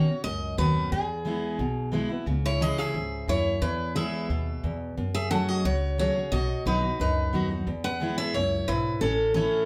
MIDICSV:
0, 0, Header, 1, 5, 480
1, 0, Start_track
1, 0, Key_signature, 4, "major"
1, 0, Tempo, 337458
1, 1307, Time_signature, 4, 2, 24, 8
1, 13730, End_track
2, 0, Start_track
2, 0, Title_t, "Steel-string acoustic guitar"
2, 0, Program_c, 0, 25
2, 0, Note_on_c, 0, 73, 97
2, 333, Note_off_c, 0, 73, 0
2, 338, Note_on_c, 0, 75, 113
2, 789, Note_off_c, 0, 75, 0
2, 829, Note_on_c, 0, 71, 90
2, 1275, Note_off_c, 0, 71, 0
2, 1310, Note_on_c, 0, 68, 80
2, 2691, Note_off_c, 0, 68, 0
2, 3493, Note_on_c, 0, 73, 94
2, 3727, Note_off_c, 0, 73, 0
2, 3727, Note_on_c, 0, 75, 102
2, 3958, Note_off_c, 0, 75, 0
2, 3958, Note_on_c, 0, 76, 111
2, 4677, Note_off_c, 0, 76, 0
2, 4683, Note_on_c, 0, 73, 91
2, 5145, Note_on_c, 0, 71, 89
2, 5170, Note_off_c, 0, 73, 0
2, 5593, Note_off_c, 0, 71, 0
2, 5629, Note_on_c, 0, 76, 86
2, 6775, Note_off_c, 0, 76, 0
2, 7318, Note_on_c, 0, 76, 102
2, 7542, Note_off_c, 0, 76, 0
2, 7547, Note_on_c, 0, 78, 104
2, 7801, Note_off_c, 0, 78, 0
2, 7801, Note_on_c, 0, 75, 104
2, 8034, Note_off_c, 0, 75, 0
2, 8040, Note_on_c, 0, 73, 99
2, 8509, Note_off_c, 0, 73, 0
2, 8526, Note_on_c, 0, 73, 90
2, 8985, Note_on_c, 0, 75, 97
2, 9012, Note_off_c, 0, 73, 0
2, 9434, Note_off_c, 0, 75, 0
2, 9481, Note_on_c, 0, 71, 83
2, 9952, Note_off_c, 0, 71, 0
2, 9969, Note_on_c, 0, 71, 82
2, 10633, Note_off_c, 0, 71, 0
2, 11154, Note_on_c, 0, 78, 110
2, 11626, Note_off_c, 0, 78, 0
2, 11632, Note_on_c, 0, 76, 100
2, 11866, Note_off_c, 0, 76, 0
2, 11866, Note_on_c, 0, 73, 104
2, 12344, Note_on_c, 0, 71, 91
2, 12348, Note_off_c, 0, 73, 0
2, 12794, Note_off_c, 0, 71, 0
2, 12814, Note_on_c, 0, 69, 92
2, 13272, Note_off_c, 0, 69, 0
2, 13289, Note_on_c, 0, 69, 86
2, 13730, Note_off_c, 0, 69, 0
2, 13730, End_track
3, 0, Start_track
3, 0, Title_t, "Resonator guitar played with a steel bar"
3, 0, Program_c, 1, 25
3, 3497, Note_on_c, 1, 64, 79
3, 3705, Note_off_c, 1, 64, 0
3, 3723, Note_on_c, 1, 68, 82
3, 3944, Note_off_c, 1, 68, 0
3, 3961, Note_on_c, 1, 68, 90
3, 4673, Note_off_c, 1, 68, 0
3, 4680, Note_on_c, 1, 64, 85
3, 5121, Note_off_c, 1, 64, 0
3, 5152, Note_on_c, 1, 64, 77
3, 5596, Note_off_c, 1, 64, 0
3, 5621, Note_on_c, 1, 68, 76
3, 6771, Note_off_c, 1, 68, 0
3, 7319, Note_on_c, 1, 68, 83
3, 7536, Note_off_c, 1, 68, 0
3, 7554, Note_on_c, 1, 69, 93
3, 7778, Note_off_c, 1, 69, 0
3, 7811, Note_on_c, 1, 66, 79
3, 8024, Note_off_c, 1, 66, 0
3, 8041, Note_on_c, 1, 66, 83
3, 8482, Note_off_c, 1, 66, 0
3, 8537, Note_on_c, 1, 66, 80
3, 8971, Note_off_c, 1, 66, 0
3, 9004, Note_on_c, 1, 66, 89
3, 9444, Note_off_c, 1, 66, 0
3, 9492, Note_on_c, 1, 63, 74
3, 9928, Note_off_c, 1, 63, 0
3, 9974, Note_on_c, 1, 63, 61
3, 10635, Note_off_c, 1, 63, 0
3, 11161, Note_on_c, 1, 71, 85
3, 11604, Note_off_c, 1, 71, 0
3, 11649, Note_on_c, 1, 68, 82
3, 11862, Note_off_c, 1, 68, 0
3, 11885, Note_on_c, 1, 64, 79
3, 12331, Note_off_c, 1, 64, 0
3, 12349, Note_on_c, 1, 64, 81
3, 12796, Note_off_c, 1, 64, 0
3, 12835, Note_on_c, 1, 61, 83
3, 13279, Note_off_c, 1, 61, 0
3, 13307, Note_on_c, 1, 61, 76
3, 13730, Note_off_c, 1, 61, 0
3, 13730, End_track
4, 0, Start_track
4, 0, Title_t, "Steel-string acoustic guitar"
4, 0, Program_c, 2, 25
4, 117, Note_on_c, 2, 66, 60
4, 152, Note_on_c, 2, 61, 47
4, 341, Note_off_c, 2, 66, 0
4, 359, Note_off_c, 2, 61, 0
4, 361, Note_on_c, 2, 42, 91
4, 818, Note_on_c, 2, 47, 85
4, 830, Note_on_c, 2, 51, 82
4, 839, Note_on_c, 2, 61, 88
4, 848, Note_on_c, 2, 66, 96
4, 1267, Note_off_c, 2, 42, 0
4, 1279, Note_off_c, 2, 47, 0
4, 1285, Note_off_c, 2, 51, 0
4, 1289, Note_off_c, 2, 61, 0
4, 1294, Note_off_c, 2, 66, 0
4, 1308, Note_on_c, 2, 40, 91
4, 1776, Note_on_c, 2, 52, 88
4, 1785, Note_on_c, 2, 56, 81
4, 1800, Note_on_c, 2, 59, 92
4, 1808, Note_on_c, 2, 64, 92
4, 2220, Note_off_c, 2, 40, 0
4, 2238, Note_off_c, 2, 52, 0
4, 2242, Note_off_c, 2, 56, 0
4, 2250, Note_off_c, 2, 59, 0
4, 2254, Note_off_c, 2, 64, 0
4, 2265, Note_on_c, 2, 47, 87
4, 2726, Note_on_c, 2, 52, 86
4, 2742, Note_on_c, 2, 56, 95
4, 2753, Note_on_c, 2, 59, 97
4, 2758, Note_on_c, 2, 64, 88
4, 2960, Note_off_c, 2, 64, 0
4, 2970, Note_off_c, 2, 52, 0
4, 2977, Note_on_c, 2, 64, 61
4, 2978, Note_off_c, 2, 56, 0
4, 2983, Note_off_c, 2, 59, 0
4, 3015, Note_on_c, 2, 59, 49
4, 3179, Note_off_c, 2, 47, 0
4, 3211, Note_off_c, 2, 64, 0
4, 3228, Note_on_c, 2, 49, 91
4, 3230, Note_off_c, 2, 59, 0
4, 3703, Note_on_c, 2, 52, 84
4, 3714, Note_on_c, 2, 56, 89
4, 3725, Note_on_c, 2, 61, 94
4, 3736, Note_on_c, 2, 64, 87
4, 4140, Note_off_c, 2, 49, 0
4, 4162, Note_off_c, 2, 52, 0
4, 4167, Note_off_c, 2, 56, 0
4, 4172, Note_off_c, 2, 61, 0
4, 4178, Note_off_c, 2, 64, 0
4, 4185, Note_on_c, 2, 44, 82
4, 4643, Note_off_c, 2, 44, 0
4, 4669, Note_on_c, 2, 42, 86
4, 5125, Note_off_c, 2, 42, 0
4, 5152, Note_on_c, 2, 40, 94
4, 5625, Note_on_c, 2, 52, 91
4, 5638, Note_on_c, 2, 56, 89
4, 5649, Note_on_c, 2, 59, 93
4, 5656, Note_on_c, 2, 64, 95
4, 6063, Note_off_c, 2, 40, 0
4, 6083, Note_off_c, 2, 52, 0
4, 6089, Note_off_c, 2, 56, 0
4, 6095, Note_off_c, 2, 59, 0
4, 6098, Note_off_c, 2, 64, 0
4, 6118, Note_on_c, 2, 47, 86
4, 6598, Note_on_c, 2, 40, 90
4, 7026, Note_off_c, 2, 47, 0
4, 7050, Note_off_c, 2, 40, 0
4, 7076, Note_on_c, 2, 42, 92
4, 7552, Note_on_c, 2, 54, 88
4, 7559, Note_on_c, 2, 57, 91
4, 7575, Note_on_c, 2, 61, 91
4, 7578, Note_on_c, 2, 68, 90
4, 7985, Note_off_c, 2, 42, 0
4, 8007, Note_off_c, 2, 54, 0
4, 8011, Note_off_c, 2, 57, 0
4, 8019, Note_off_c, 2, 61, 0
4, 8020, Note_off_c, 2, 68, 0
4, 8039, Note_on_c, 2, 49, 86
4, 8509, Note_on_c, 2, 54, 78
4, 8527, Note_on_c, 2, 57, 90
4, 8538, Note_on_c, 2, 61, 84
4, 8546, Note_on_c, 2, 68, 88
4, 8733, Note_off_c, 2, 68, 0
4, 8743, Note_off_c, 2, 54, 0
4, 8750, Note_on_c, 2, 68, 61
4, 8752, Note_off_c, 2, 57, 0
4, 8757, Note_off_c, 2, 61, 0
4, 8785, Note_on_c, 2, 61, 49
4, 8947, Note_off_c, 2, 49, 0
4, 8979, Note_off_c, 2, 68, 0
4, 8994, Note_on_c, 2, 47, 87
4, 8996, Note_off_c, 2, 61, 0
4, 9464, Note_on_c, 2, 54, 81
4, 9474, Note_on_c, 2, 59, 87
4, 9486, Note_on_c, 2, 63, 89
4, 9496, Note_on_c, 2, 66, 102
4, 9678, Note_off_c, 2, 66, 0
4, 9695, Note_on_c, 2, 66, 57
4, 9700, Note_off_c, 2, 54, 0
4, 9705, Note_off_c, 2, 59, 0
4, 9711, Note_off_c, 2, 63, 0
4, 9732, Note_on_c, 2, 63, 48
4, 9905, Note_off_c, 2, 47, 0
4, 9932, Note_off_c, 2, 66, 0
4, 9950, Note_off_c, 2, 63, 0
4, 9952, Note_on_c, 2, 42, 90
4, 10422, Note_on_c, 2, 54, 82
4, 10434, Note_on_c, 2, 59, 82
4, 10443, Note_on_c, 2, 63, 84
4, 10453, Note_on_c, 2, 66, 93
4, 10649, Note_off_c, 2, 66, 0
4, 10659, Note_off_c, 2, 54, 0
4, 10666, Note_off_c, 2, 59, 0
4, 10666, Note_on_c, 2, 66, 59
4, 10670, Note_off_c, 2, 63, 0
4, 10699, Note_on_c, 2, 63, 49
4, 10864, Note_off_c, 2, 42, 0
4, 10897, Note_off_c, 2, 66, 0
4, 10912, Note_on_c, 2, 40, 82
4, 10914, Note_off_c, 2, 63, 0
4, 11379, Note_on_c, 2, 52, 92
4, 11396, Note_on_c, 2, 56, 83
4, 11402, Note_on_c, 2, 59, 94
4, 11417, Note_on_c, 2, 64, 97
4, 11824, Note_off_c, 2, 40, 0
4, 11841, Note_off_c, 2, 52, 0
4, 11850, Note_off_c, 2, 56, 0
4, 11853, Note_off_c, 2, 59, 0
4, 11860, Note_off_c, 2, 64, 0
4, 11870, Note_on_c, 2, 42, 82
4, 12327, Note_off_c, 2, 42, 0
4, 12362, Note_on_c, 2, 44, 82
4, 12813, Note_off_c, 2, 44, 0
4, 12837, Note_on_c, 2, 45, 89
4, 13299, Note_on_c, 2, 52, 83
4, 13309, Note_on_c, 2, 57, 92
4, 13323, Note_on_c, 2, 61, 102
4, 13327, Note_on_c, 2, 64, 99
4, 13730, Note_off_c, 2, 45, 0
4, 13730, Note_off_c, 2, 52, 0
4, 13730, Note_off_c, 2, 57, 0
4, 13730, Note_off_c, 2, 61, 0
4, 13730, Note_off_c, 2, 64, 0
4, 13730, End_track
5, 0, Start_track
5, 0, Title_t, "Upright bass"
5, 0, Program_c, 3, 32
5, 349, Note_on_c, 3, 37, 90
5, 756, Note_off_c, 3, 37, 0
5, 825, Note_on_c, 3, 39, 90
5, 1234, Note_off_c, 3, 39, 0
5, 1304, Note_on_c, 3, 40, 86
5, 1925, Note_off_c, 3, 40, 0
5, 2258, Note_on_c, 3, 35, 85
5, 2881, Note_off_c, 3, 35, 0
5, 3217, Note_on_c, 3, 37, 91
5, 3840, Note_off_c, 3, 37, 0
5, 4181, Note_on_c, 3, 37, 88
5, 4592, Note_off_c, 3, 37, 0
5, 4661, Note_on_c, 3, 39, 82
5, 5072, Note_off_c, 3, 39, 0
5, 5141, Note_on_c, 3, 40, 90
5, 5763, Note_off_c, 3, 40, 0
5, 6109, Note_on_c, 3, 39, 85
5, 6517, Note_off_c, 3, 39, 0
5, 6592, Note_on_c, 3, 40, 86
5, 6999, Note_off_c, 3, 40, 0
5, 7076, Note_on_c, 3, 42, 86
5, 7694, Note_off_c, 3, 42, 0
5, 8029, Note_on_c, 3, 37, 90
5, 8649, Note_off_c, 3, 37, 0
5, 8988, Note_on_c, 3, 35, 91
5, 9299, Note_off_c, 3, 35, 0
5, 9471, Note_on_c, 3, 35, 83
5, 9879, Note_off_c, 3, 35, 0
5, 9953, Note_on_c, 3, 37, 84
5, 10360, Note_off_c, 3, 37, 0
5, 10430, Note_on_c, 3, 39, 84
5, 10838, Note_off_c, 3, 39, 0
5, 10906, Note_on_c, 3, 40, 89
5, 11528, Note_off_c, 3, 40, 0
5, 11866, Note_on_c, 3, 37, 86
5, 12276, Note_off_c, 3, 37, 0
5, 12347, Note_on_c, 3, 35, 85
5, 12757, Note_off_c, 3, 35, 0
5, 12821, Note_on_c, 3, 33, 92
5, 13444, Note_off_c, 3, 33, 0
5, 13730, End_track
0, 0, End_of_file